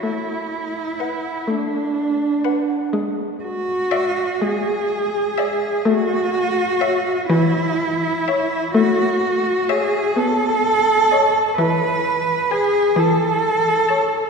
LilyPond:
<<
  \new Staff \with { instrumentName = "Violin" } { \time 6/8 \key a \major \tempo 4. = 42 r4 fis''8 r4 fis''8 | r4 e''8 r4 e''8 | r4 e''8 r4 e''8 | \key e \major r4 e''8 r4 dis''8 |
r4 gis''8 r4 a''8 | }
  \new Staff \with { instrumentName = "Violin" } { \time 6/8 \key a \major r4 b'8 r4 b'8 | r4 d''8 r4 d''8 | r4 cis''8 r4 cis''8 | \key e \major r4 cis''8 r4 cis''8 |
r4 b'8 r4 cis''8 | }
  \new Staff \with { instrumentName = "Cello" } { \time 6/8 \key a \major e'4. d'4. | r8 fis'4 gis'4. | fis'4. e'4. | \key e \major fis'4 gis'8 a'4. |
b'4 gis'8 a'4. | }
  \new Staff \with { instrumentName = "Viola" } { \clef bass \time 6/8 \key a \major a4. a4. | gis4. gis4. | a4. e4. | \key e \major a4. b4. |
e4. e4. | }
>>